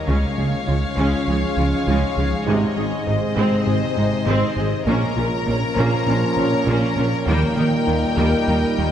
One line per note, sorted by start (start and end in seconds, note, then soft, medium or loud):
0.07 0.20 C#2 medium
0.07 0.25 C#2 medium
0.07 0.16 C#2 medium
0.07 4.68 G#2 medium
0.07 0.16 C#3 medium
0.07 0.26 C#3 medium
0.07 4.68 G#3 medium
0.07 0.35 G#3 medium
0.07 4.88 G#3 medium
0.07 2.31 C#4 medium
0.07 0.35 C#4 medium
0.07 2.48 C#4 medium
0.07 2.31 F4 medium
0.07 4.88 G#4 medium
0.07 3.08 C#5 medium
0.07 2.44 F5 medium
0.07 2.48 F5 medium
0.37 0.49 C#2 soft
0.37 0.47 C#2 soft
0.37 0.56 C#3 medium
0.37 0.46 C#3 soft
0.37 0.46 G#3 soft
0.37 0.56 G#3 medium
0.37 0.46 G#4 soft
0.67 0.79 C#2 soft
0.67 0.86 C#2 medium
0.67 0.76 C#2 soft
0.67 0.76 C#3 soft
0.67 0.75 G#3 soft
0.67 0.85 C#4 medium
0.67 0.75 F4 soft
0.97 1.09 C#2 medium
0.97 1.15 C#2 medium
0.97 1.05 C#2 medium
0.97 1.15 C#3 medium
0.97 1.06 C#3 medium
0.97 1.25 G#3 medium
0.97 1.25 C#4 medium
1.27 1.35 C#2 soft
1.27 1.45 C#2 medium
1.27 1.40 C#2 soft
1.27 1.37 C#3 soft
1.27 1.46 F3 medium
1.27 1.36 G#3 soft
1.27 1.36 G#4 soft
1.57 1.75 C#2 medium
1.57 1.65 C#2 soft
1.57 1.69 C#2 soft
1.57 1.67 C#3 soft
1.57 1.76 F3 medium
1.57 1.66 G#3 soft
1.57 1.66 F4 medium
1.87 1.95 C#2 medium
1.87 2.05 C#2 medium
1.87 1.99 C#2 medium
1.87 2.05 C#3 medium
1.87 1.97 C#3 medium
1.87 2.16 G#3 medium
1.87 2.16 C#4 medium
2.17 2.35 C#2 medium
2.17 2.25 C#2 soft
2.17 2.29 C#2 soft
2.17 2.27 C#3 soft
2.17 2.35 F3 medium
2.17 2.25 G#3 soft
2.17 2.25 G#4 medium
2.47 2.55 G#1 medium
2.47 2.59 G#1 medium
2.47 2.65 G#2 medium
2.47 2.56 G#2 medium
2.47 2.75 C3 medium
2.47 4.88 C3 medium
2.47 4.84 C3 medium
2.47 2.75 G#3 medium
2.47 2.65 G#3 medium
2.47 4.83 D#4 medium
2.47 4.83 D#5 medium
2.47 4.88 D#5 medium
2.76 2.84 G#1 soft
2.76 2.89 G#1 medium
2.76 2.85 G#2 soft
2.76 2.85 G#3 soft
2.76 2.95 G#3 medium
2.76 2.95 D#4 medium
2.76 2.84 G#4 medium
3.07 3.15 G#1 medium
3.07 3.20 G#1 medium
3.07 3.15 G#2 soft
3.07 3.25 G#2 medium
3.07 3.15 G#3 medium
3.07 3.15 D#4 soft
3.07 3.25 G#4 medium
3.07 4.87 C5 medium
3.37 3.45 G#1 medium
3.37 3.49 G#1 medium
3.37 3.45 G#2 medium
3.37 3.55 G#2 medium
3.37 3.65 G#3 medium
3.37 3.55 G#3 medium
3.37 3.65 C4 medium
3.66 3.74 G#1 medium
3.66 3.79 G#1 medium
3.66 3.74 G#2 soft
3.66 3.85 G#2 medium
3.66 3.75 G#3 medium
3.66 3.85 C4 medium
3.66 3.75 G#4 medium
3.96 4.04 G#1 medium
3.96 4.10 G#1 soft
3.96 4.05 G#2 medium
3.96 4.15 G#2 medium
3.96 4.06 G#3 medium
3.96 4.15 C4 medium
3.96 4.06 D#4 soft
4.26 4.34 G#1 medium
4.26 4.40 G#1 medium
4.26 4.34 G#2 medium
4.26 4.45 G#2 medium
4.26 4.45 G#3 medium
4.26 4.56 G#3 medium
4.26 4.55 C4 medium
4.56 4.64 G#1 medium
4.56 4.70 G#1 medium
4.56 4.75 G#2 medium
4.56 4.65 G#2 medium
4.56 4.66 G#3 medium
4.56 4.75 C4 medium
4.56 4.66 G#4 soft
4.85 4.93 A#1 medium
4.85 4.99 A#1 medium
4.85 8.92 A#2 medium
4.85 4.95 A#2 medium
4.85 5.05 A#2 medium
4.85 7.23 F3 medium
4.85 7.27 F3 medium
4.85 8.92 A#3 medium
4.85 5.05 A#3 medium
4.85 5.15 A#3 medium
4.85 5.15 C#4 medium
4.85 7.23 C#4 medium
4.85 8.92 A#4 medium
4.85 7.27 C#5 medium
4.85 7.23 A#5 medium
5.16 5.24 A#1 medium
5.16 5.29 A#1 medium
5.16 5.25 A#2 medium
5.16 5.35 A#3 medium
5.16 5.26 C#4 medium
5.16 5.35 F4 medium
5.16 5.26 F4 medium
5.46 5.55 A#1 soft
5.46 5.59 A#1 medium
5.46 5.54 A#2 soft
5.46 5.65 A#2 medium
5.46 5.57 C#4 medium
5.46 5.65 A#4 medium
5.76 5.85 A#1 medium
5.76 5.90 A#1 medium
5.76 5.84 A#2 medium
5.76 5.95 A#2 medium
5.76 5.95 A#3 medium
5.76 6.06 A#3 medium
5.76 6.06 C#4 medium
6.06 6.15 A#1 medium
6.06 6.20 A#1 medium
6.06 6.25 A#2 medium
6.06 6.15 A#2 medium
6.06 6.25 C#4 medium
6.06 6.17 C#4 medium
6.06 6.17 F4 medium
6.37 6.45 A#1 medium
6.37 6.50 A#1 medium
6.37 6.45 A#2 medium
6.37 6.55 A#2 medium
6.37 6.55 C#4 medium
6.37 6.46 C#4 medium
6.66 6.75 A#1 medium
6.66 6.79 A#1 medium
6.66 6.84 A#2 medium
6.66 6.75 A#2 medium
6.66 6.85 A#3 medium
6.66 6.96 A#3 medium
6.66 6.96 C#4 medium
6.96 7.04 A#1 medium
6.96 7.09 A#1 medium
6.96 7.15 A#2 medium
6.96 7.05 A#2 medium
6.96 7.15 C#4 medium
6.96 7.05 C#4 medium
6.96 7.05 F4 medium
7.26 7.45 D#2 medium
7.26 7.35 D#2 medium
7.26 7.39 D#2 medium
7.26 7.45 D#3 medium
7.26 7.36 D#3 medium
7.26 8.92 G3 medium
7.26 7.55 G3 medium
7.26 8.92 G3 medium
7.26 7.55 A#3 medium
7.26 8.92 D#4 medium
7.26 8.92 D#5 medium
7.26 8.92 G5 medium
7.57 7.69 D#2 medium
7.57 7.66 D#2 medium
7.57 7.75 D#3 medium
7.57 7.65 D#3 soft
7.57 7.75 A#3 medium
7.57 7.65 A#3 medium
7.57 7.65 D#4 soft
7.87 8.05 D#2 medium
7.87 8.00 D#2 soft
7.87 7.97 D#2 soft
7.87 7.96 D#3 soft
7.87 7.95 A#3 medium
7.87 8.05 D#4 medium
8.16 8.35 D#2 medium
8.16 8.30 D#2 medium
8.16 8.26 D#2 medium
8.16 8.35 D#3 medium
8.16 8.26 D#3 medium
8.16 8.45 G3 medium
8.16 8.45 A#3 medium
8.48 8.66 D#2 medium
8.48 8.56 D#2 soft
8.48 8.60 D#2 medium
8.48 8.56 D#3 medium
8.48 8.66 G3 medium
8.48 8.56 A#3 soft
8.48 8.56 D#4 medium
8.77 8.89 D#2 soft
8.77 8.86 D#2 soft
8.77 8.92 D#2 medium
8.77 8.86 D#3 soft
8.77 8.92 G3 medium
8.77 8.86 A#3 medium